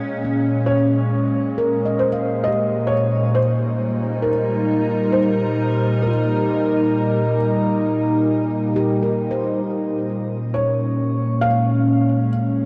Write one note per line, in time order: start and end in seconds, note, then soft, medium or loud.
0.00 2.46 A#2 medium
0.00 2.49 G#3 medium
0.00 2.49 C#4 medium
0.00 0.74 D#5 medium
0.25 2.89 C#4 medium
0.66 2.06 C#5 medium
1.58 2.89 A#4 medium
1.85 3.14 D#5 soft
1.99 2.48 C5 medium
2.12 3.38 F5 soft
2.44 9.64 A#2 medium
2.44 5.95 G4 soft
2.44 2.92 D#5 medium
2.79 9.65 G3 medium
2.87 11.94 D#4 medium
2.87 3.36 C#5 medium
3.35 4.29 C5 medium
3.48 12.51 A#4 medium
4.22 5.17 A#4 medium
5.12 6.07 C5 medium
6.02 7.35 A#4 medium
6.07 9.54 F4 soft
8.76 10.06 G4 medium
9.03 10.30 A#4 soft
9.31 10.56 C5 soft
9.65 12.65 A#2 medium
9.65 12.65 A#3 medium
9.83 12.65 C#4 medium
10.08 12.65 G#3 medium
10.08 12.65 F4 medium
10.54 11.46 C#5 medium
11.41 12.28 F5 medium